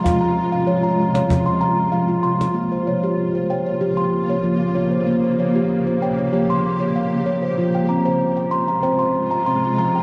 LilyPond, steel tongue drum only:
<<
  \new Staff \with { instrumentName = "Steel tongue drum" } { \time 4/4 \tempo 4 = 96 << { <f'' c'''>16 bes''8 f''8 bes''8 f''8 c'''8. f''8 c'''8~ | c'''16 c''16 des''8. c''16 des''16 des''8 c'''8. r8. c''16~ | c''16 c''16 des''8. c''16 des''16 des''16 des''16 c'''8. f''8. c''16~ | c''16 g''16 bes''8. g''16 bes''16 bes''16 g''16 c'''8. c'''8. g''16 | } \\ { f'8 r8 des''8 r16 des''8 r16 bes''8 r16 f'8 r16 | bes8 r16 g'8 r16 g''8 g'8 r16 des''8 r16 des''8 | r8. g'8 r16 g''8 g'8 r16 des''8 r16 des''8 | f'8 r16 c''8 r16 c'''8 c''8 r16 bes''8 r16 bes''8 | } >> }
  \new Staff \with { instrumentName = "Steel tongue drum" } { \clef bass \time 4/4 f8 r8 f4 f4 f8 r8 | r8 f4. f4 f8 bes8 | bes8 f4. f4 f8 bes8 | f8 c'4. c'4 c'8 f8 | }
>>